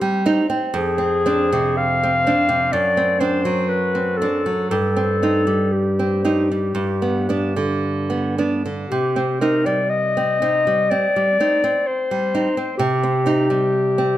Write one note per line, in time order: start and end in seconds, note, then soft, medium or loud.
0.00 0.39 G3 medium
0.00 0.24 C4 medium
0.00 0.42 G4 medium
0.26 0.47 C4 soft
0.26 0.47 D#4 medium
0.50 0.73 C4 medium
0.74 2.69 F2 medium
0.74 1.79 G#4 medium
0.98 1.25 C4 medium
1.26 1.49 C4 medium
1.26 1.50 D4 medium
1.52 2.32 C3 medium
1.77 2.74 F5 medium
2.03 2.25 C4 medium
2.27 2.48 C4 soft
2.27 2.48 D4 medium
2.49 2.73 C3 medium
2.72 4.67 F#2 medium
2.72 3.22 D5 medium
2.97 3.19 C4 soft
3.20 3.42 C4 soft
3.20 3.42 D4 medium
3.20 3.70 C5 medium
3.45 4.25 F#3 medium
3.69 4.19 B4 medium
3.95 4.20 C4 soft
4.17 4.70 A4 medium
4.22 4.44 C4 soft
4.22 4.44 D4 soft
4.46 4.71 F#3 soft
4.70 6.71 G2 medium
4.70 5.74 A4 medium
4.96 5.21 C4 soft
5.23 5.45 C4 soft
5.23 5.45 D#4 soft
5.47 6.24 G3 soft
5.72 8.36 G4 medium
5.99 6.23 C4 soft
6.25 6.47 C4 soft
6.25 6.48 D#4 soft
6.52 6.76 G3 soft
6.75 8.85 G2 medium
7.02 7.28 B3 soft
7.29 7.52 B3 soft
7.29 7.53 D4 soft
7.56 8.42 D3 soft
8.10 8.37 B3 soft
8.38 8.61 B3 soft
8.38 8.62 D4 soft
8.66 8.90 D3 soft
8.89 10.88 C3 medium
8.89 9.37 G4 medium
9.16 9.40 C4 soft
9.41 9.64 C4 soft
9.41 9.64 D#4 soft
9.41 9.67 A#4 medium
9.66 10.41 G3 soft
9.66 9.91 D5 medium
9.90 10.92 D#5 medium
10.17 10.41 C4 soft
10.42 10.64 C4 soft
10.42 10.64 D#4 soft
10.67 11.06 G3 soft
10.90 11.30 C4 soft
10.90 11.89 D5 medium
11.16 11.40 G3 soft
11.40 11.61 C4 soft
11.40 11.61 D#4 soft
11.64 12.33 C4 soft
11.87 12.77 C5 medium
12.11 12.47 G3 soft
12.35 12.54 C4 soft
12.35 12.54 D#4 soft
12.57 12.79 C4 soft
12.78 14.18 C3 medium
12.78 14.18 G4 medium
13.03 13.25 C4 soft
13.26 13.47 C4 soft
13.26 13.47 D#4 soft
13.50 14.18 G3 soft
13.98 14.18 C4 soft